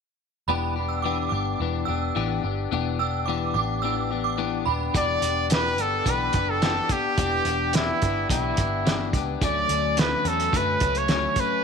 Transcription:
0.48 E1 E3 B3 D4 G4 B5
0.76 B3 D4 G4
0.89 E6
1.02 E3 B3 D4 G4 D6
1.29 G1 G4 D6
1.34 B3 D4
1.60 E1 E3 B3 D4 G4
1.85 E1 D4 G4 E6
1.90 B3
2.15 A1 E3 B3 D4 G4
2.43 G1 B3 D4 G4
2.72 E1 E3 B3 D4 G4
2.99 B3 D4 G4 E6
3.26 E3 B3 D4 G4 D6
3.54 A1 B3 D4 G4 D6
3.82 E3 B3 D4 G4 E6
4.10 B3 D4 G4
4.24 D6
4.38 E3 B3 D4 G4
4.66 D#1 B3 D4 G4 B5
4.94 E1 E3 B3 D4 G4 D5, kick, closed hi-hat
5.21 E1 B3 D4 G4, closed hi-hat
5.50 E3 B3 D4 G4 B4, snare, closed hi-hat
5.78 G1 B3 D4 G4 A4, closed hi-hat
6.06 B1 E3 B3 D4 G4, kick, closed hi-hat
6.10 B4
6.33 F#1 B3 D4 G4, kick, closed hi-hat
6.50 A4
6.62 E3 B3 D4 G4, snare, closed hi-hat
6.89 B3 D4 G4, kick, closed hi-hat
7.17 E1 E3 B3 D4 G4, kick, closed hi-hat
7.45 E1 B3 D4 G4, closed hi-hat
7.73 E3 B3 D4 E4 G4, snare, closed hi-hat
8.02 G1 B3 D4 G4, kick, closed hi-hat
8.29 B1 E3 B3 D4 E4 G4, kick, closed hi-hat
8.57 G1 B3 D4 G4, kick, closed hi-hat
8.85 E3 B3 D4 G4, snare, closed hi-hat
9.13 C#2 B3 D4 G4, kick, closed hi-hat
9.41 D2 D3 F#3 A3 C#4 D5, kick, closed hi-hat
9.69 D2 F#3 A3 C#4, closed hi-hat
9.97 D3 F#3 A3 C#4 B4, snare, closed hi-hat
10.24 E2 F#3 A3 C#4 A4, closed hi-hat
10.40 closed hi-hat
10.52 F#2 D3 F#3 A3 C#4, kick, closed hi-hat
10.57 B4
10.80 C#2 F#3 A3 C#4, kick, closed hi-hat
10.95 C#5, closed hi-hat
11.08 D3 F#3 A3 C#4, snare, closed hi-hat
11.36 F#3 A3 C#4, kick, closed hi-hat
11.40 B4

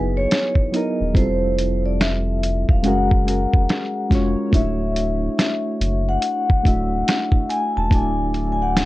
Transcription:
Already playing: F#1 F#3 B3 D#4 E4 G#4 B4
0.17 C#5
0.31 snare, closed hi-hat
0.55 kick
0.72 F#3 B3 D#4 E4 D#5, closed hi-hat
0.76 A#4
1.01 D#1
1.14 F1 G3 C4 E4 F4 C5, kick, closed hi-hat
1.18 A4
1.59 closed hi-hat
1.86 D5
2.00 E5, snare, closed hi-hat
2.43 closed hi-hat
2.69 E1 F5, kick
2.83 F#1 G#3 C#4 F#4 G#4 F#5, closed hi-hat
2.88 A#4
3.11 kick
3.25 G#3 C#4 F#4 G#4, closed hi-hat
3.30 A#4
3.53 F1, kick
3.69 snare, closed hi-hat
4.10 F1 G#3 C#4 F4 F#4, kick, snare, closed hi-hat
4.15 C#5
4.51 D1 A3 D4 E4 F#4 E5, kick, closed hi-hat
4.56 C#5
4.96 closed hi-hat
5.39 snare, closed hi-hat
5.80 F#1, closed hi-hat
6.09 F#5
6.22 closed hi-hat
6.50 kick
6.63 D1 A3 D4 E4 F#4, kick, closed hi-hat
6.68 E5
7.08 snare, closed hi-hat
7.32 kick
7.50 G#5, closed hi-hat
7.77 E1 A5
7.90 D1 A3 D4 E4 F#4 G#5, kick, closed hi-hat
7.95 D5
8.34 closed hi-hat
8.52 G#5
8.62 F#5
8.77 snare, closed hi-hat

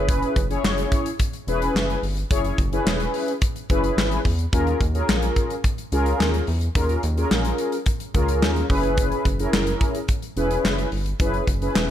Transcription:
Already playing: F#1 C#4 E4 G#4 B4
0.09 kick, closed hi-hat
0.23 closed hi-hat
0.36 F#1, kick, closed hi-hat
0.50 C#4 E4 G#4 C#5, closed hi-hat
0.64 F#1, snare, clap
0.78 closed hi-hat
0.92 kick, closed hi-hat
1.06 closed hi-hat
1.19 kick, closed hi-hat
1.33 closed hi-hat
1.47 E1 C#4 E4 G#4 B4, closed hi-hat
1.62 closed hi-hat
1.75 F#1, snare, clap
1.90 closed hi-hat
2.02 G1, open hi-hat
2.17 closed hi-hat
2.31 F#1 C#4 E4 G#4 C#5, kick, closed hi-hat
2.44 closed hi-hat
2.58 F#1, kick, closed hi-hat
2.72 C#4 E4 G#4 B4, closed hi-hat
2.86 E1, snare, clap
3.00 closed hi-hat
3.14 open hi-hat
3.28 closed hi-hat
3.42 kick, closed hi-hat
3.56 closed hi-hat
3.69 F#1 C#4 E4 G#4 B4, kick, closed hi-hat
3.84 closed hi-hat
3.97 G#1, snare, clap
4.12 closed hi-hat
4.25 E2, kick, open hi-hat
4.39 closed hi-hat
4.52 D#2 C#4 F4 G#4 A#4, kick, closed hi-hat
4.67 closed hi-hat
4.80 D#2, kick, closed hi-hat
4.95 C#4 F4 G#4 A#4, closed hi-hat
5.09 A#1, snare, clap
5.22 closed hi-hat
5.36 kick, closed hi-hat
5.50 closed hi-hat
5.64 kick, closed hi-hat
5.78 closed hi-hat
5.92 C#2 C#4 F4 G#4 A#4, closed hi-hat
6.06 closed hi-hat
6.20 D#2, snare, clap
6.34 closed hi-hat
6.47 E2, open hi-hat
6.61 closed hi-hat
6.75 D#2 C#4 F4 G#4 A#4, kick, closed hi-hat
6.89 closed hi-hat
7.03 D#2, closed hi-hat
7.17 C#4 F4 G#4 A#4, closed hi-hat
7.31 A#1, snare, clap
7.45 closed hi-hat
7.58 closed hi-hat
7.72 closed hi-hat
7.86 kick, closed hi-hat
8.00 closed hi-hat
8.14 C#2 C#4 F4 G#4 A#4, kick, closed hi-hat
8.28 closed hi-hat
8.42 D#2, snare, clap
8.56 closed hi-hat
8.70 F#1 C#4 E4 G#4 B4, kick, open hi-hat
8.83 closed hi-hat
8.97 kick, closed hi-hat
9.12 closed hi-hat
9.25 F#1, kick, closed hi-hat
9.39 C#4 E4 G#4 A#4, closed hi-hat
9.53 F#1, snare, clap
9.67 closed hi-hat
9.81 kick, closed hi-hat
9.95 closed hi-hat
10.08 kick, closed hi-hat
10.22 closed hi-hat
10.36 E1 C#4 E4 G#4 B4, closed hi-hat
10.51 closed hi-hat
10.64 F#1, snare, clap
10.78 closed hi-hat
10.92 G1, open hi-hat
11.06 closed hi-hat
11.20 F#1 C#4 E4 G#4 B4, kick, closed hi-hat
11.34 closed hi-hat
11.47 F#1, kick, closed hi-hat
11.62 C#4 E4 G#4 B4, closed hi-hat
11.75 E1, snare, clap

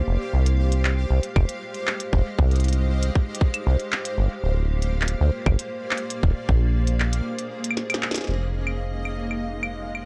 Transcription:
Already playing: A#3 G4 C5 F5
0.08 F1 G#3
0.34 C2
0.46 closed hi-hat
0.72 closed hi-hat
0.85 clap
1.10 C2
1.18 D#5
1.23 closed hi-hat
1.36 F1, kick, claves
1.49 closed hi-hat
1.74 closed hi-hat
1.87 clap
2.00 closed hi-hat
2.13 F1, kick
2.39 C2, kick
2.51 closed hi-hat
2.56 closed hi-hat
2.60 closed hi-hat
2.64 closed hi-hat
2.68 closed hi-hat
2.73 closed hi-hat
3.03 closed hi-hat
3.15 kick
3.35 closed hi-hat
3.41 kick
3.54 closed hi-hat, claves
3.67 C2
3.80 closed hi-hat
3.92 clap
4.05 closed hi-hat
4.18 G1 A#3
4.44 D1
4.82 closed hi-hat
5.01 clap
5.08 closed hi-hat
5.21 D2
5.46 G1, kick, claves
5.59 closed hi-hat
5.91 clap
5.97 closed hi-hat
6.10 closed hi-hat
6.23 D#1, kick
6.31 G#4
6.49 A#1, kick
6.87 closed hi-hat
7.00 clap, claves
7.13 D#5, closed hi-hat
7.39 closed hi-hat
7.64 closed hi-hat
7.71 claves
7.77 snare
7.90 closed hi-hat, claves
7.94 snare
8.03 clap
8.11 snare
8.14 snare, closed hi-hat
8.18 snare
8.21 snare
8.24 snare
8.27 F1 G#3 F5, snare
8.30 snare
8.34 snare
8.67 claves
9.02 G4, claves
9.26 F5
9.31 claves
9.63 claves
9.95 claves

